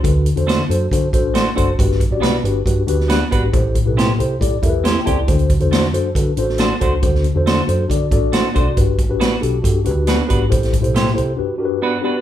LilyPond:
<<
  \new Staff \with { instrumentName = "Tine electric piano" } { \time 4/4 \key d \mixolydian \tempo 4 = 137 <d' fis' a' b'>8 r16 <d' fis' a' c''>8 r16 <d' fis' a' c''>16 r16 <d' fis' a' c''>16 r16 <d' fis' a' c''>8. r16 <d' fis' a' c''>16 r16 | <d' fis' g' b'>8 r16 <d' fis' g' d''>8 r16 <d' fis' g' b'>16 r16 <d' fis' g' b'>16 r16 <d' fis' g' b'>8. r16 <d' fis' g' b'>16 r16 | <e' g' a' c''>8 r16 <e' g' a' b'>8 r16 <e' g' a' c''>16 r16 <e' g' a' d''>16 r16 <e' g' a' bes' b'>8. r16 <e' g' a' d''>16 r16 | <d' fis' a' c''>8 r16 <d' fis' a' c''>8 r16 <d' fis' a' c''>16 r16 <d' fis' a' b'>16 r16 <d' f' fis' a' c''>8. r16 <d' fis' a' c''>16 r16 |
<d' fis' a' c''>8 r16 <d' fis' a' c''>8 r16 <d' fis' a' c''>16 r16 <d' fis' a' d''>16 r16 <d' fis' a' d''>8. r16 <d' fis' a' d''>16 r16 | <d' fis' g' b'>8 r16 <d' fis' g' b'>8 r16 <d' fis' g' a'>16 r16 <d' fis' g' a'>16 r16 <d' fis' g' b'>8. r16 <d' fis' g' b'>16 r16 | <e' g' a' c''>8 r16 <e' g' a' c''>8 r16 <e' g' a' c''>16 r16 <d' fis' g' b'>16 r16 <d' fis' g' bes' b'>8. r16 <d' fis' g' b'>16 r16 | }
  \new Staff \with { instrumentName = "Tine electric piano" } { \clef bass \time 4/4 \key d \mixolydian d4. r2 r8 | g,4. r2 r8 | a,4. r4 e''8 g''8 a''8 | d4. r2 r8 |
d4. r2 r8 | g,4. r2 r8 | a,4. r8 g,4. r8 | }
  \new Staff \with { instrumentName = "Clean electric guitar" } { \time 4/4 \key d \mixolydian r4 <a d' fis' c''>8 r4. <a d' fis' c''>8 <a d' fis' c''>16 r16 | r4 <b d' fis' b'>8 r4. <b d' fis' b'>8 <b d' fis' b'>16 r16 | r4 <c' e' g' c''>8 r4. <c' e' g' c''>8 <c' e' g' c''>16 r16 | r4 <a d' fis' c''>8 r4. <a d' fis' c''>8 <a d' fis' c''>16 r16 |
r4 <a d' fis' c''>8 r4. <a d' fis' c''>8 <a d' fis' c''>16 r16 | r4 <b d' fis' b'>8 r4. <b d' fis' b'>8 <b d' fis' b'>16 r16 | r4 <a e' g' c''>8 r4. <b d' fis' b'>8 <b d' fis' b'>16 r16 | }
  \new Staff \with { instrumentName = "Fingered electric bass" } { \clef bass \time 4/4 \key d \mixolydian d,8. e,8. fis,8 d8 a,,4 fis,,8 | g,,8. a,,16 b,,8 g,,8 g,8 d,4 gis,,8 | a,,8. b,,8. c,8 a,8 e,4 cis,8 | d,8. e,8. fis,8 d8 a,,4 cis,8 |
d,8. e,8. fis,8 d8 a,,8. r16 b,,16 c,16 | g,,8. a,,8. b,,8 g,8 d,4 gis,,8 | a,,8. b,,8. c,8 r2 | }
  \new DrumStaff \with { instrumentName = "Drums" } \drummode { \time 4/4 <hh bd>8 hh16 hh16 <hh sn>8 hh8 <hh bd>8 <hh bd>8 <hh sn>8 <hh bd>8 | <hh bd>16 sn16 <hh bd>8 <hh sn>16 sn16 hh8 <hh bd>8 hh16 sn16 <hh sn>8 <hh bd>8 | <hh bd>8 <hh bd>8 <hh sn>8 hh8 <hh bd>8 <hh bd>8 <hh sn>8 <hh bd>8 | <hh bd>16 hh16 <hh bd>16 hh16 <hh sn>16 sn16 hh8 <hh bd>8 hh16 sn16 <hh sn>8 <hh bd>8 |
<hh bd>16 sn16 hh8 <hh sn>8 hh8 <hh bd>8 <hh bd>8 <hh sn>8 <hh bd>8 | <hh bd>8 <hh bd>8 <hh sn>8 hh8 <hh bd>8 hh8 <hh sn>8 <hh bd>8 | <hh bd>16 <hh sn>16 <hh bd>16 hh16 <hh sn>16 sn16 hh8 r4 r4 | }
>>